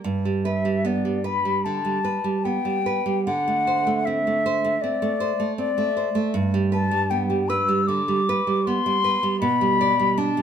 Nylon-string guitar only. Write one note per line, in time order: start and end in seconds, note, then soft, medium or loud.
0.04 1.62 G2 medium
0.25 0.58 G3 soft
0.45 0.78 B4 soft
0.65 0.98 G3 soft
0.85 1.17 B3 medium
1.05 1.38 G3 soft
1.24 1.57 B4 medium
1.45 1.78 G3 soft
1.66 1.98 D3 medium
1.85 2.17 G3 soft
2.04 2.37 B4 medium
2.24 2.57 G3 soft
2.45 2.78 B3 soft
2.65 2.98 G3 soft
2.86 3.19 B4 medium
3.06 3.27 G3 medium
3.27 4.77 D3 medium
3.48 3.79 A3 soft
3.67 3.99 C5 medium
3.87 4.18 A3 medium
4.07 4.37 C4 medium
4.27 4.56 A3 medium
4.46 4.75 C5 medium
4.65 4.93 A3 soft
4.84 5.12 C4 soft
5.02 5.32 A3 medium
5.20 5.50 C5 medium
5.40 5.70 A3 medium
5.58 5.89 C4 soft
5.78 6.08 A3 soft
5.97 6.27 C5 medium
6.15 6.34 A3 medium
6.34 7.84 G2 medium
6.54 6.84 G3 medium
6.72 7.03 B4 medium
6.91 7.22 G3 medium
7.11 7.42 B3 medium
7.30 7.61 G3 soft
7.50 7.81 B4 medium
7.68 8.00 G3 medium
7.89 8.20 D3 soft
8.08 8.39 G3 medium
8.29 8.59 B4 medium
8.47 8.77 G3 soft
8.67 8.97 B3 medium
8.86 9.15 G3 medium
9.04 9.34 B4 medium
9.23 9.42 G3 medium
9.42 10.42 B2 medium
9.61 9.91 G3 medium
9.81 10.11 D5 medium
10.00 10.29 G3 medium
10.18 10.42 D4 medium
10.37 10.42 G3 medium